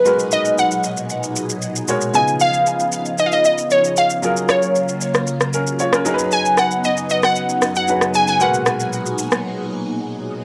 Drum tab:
SH |xxxxxxxxxxxxxxxx|xxxxxxxxxxxxxxxx|xxxxxxxxxxxxxxxx|xxxxxxxxxxxxxxxx|
SD |----------------|----------------|--r----r-r---r--|--r----r--r--r--|

SH |xxxxxxxx--------|
SD |--r----r--------|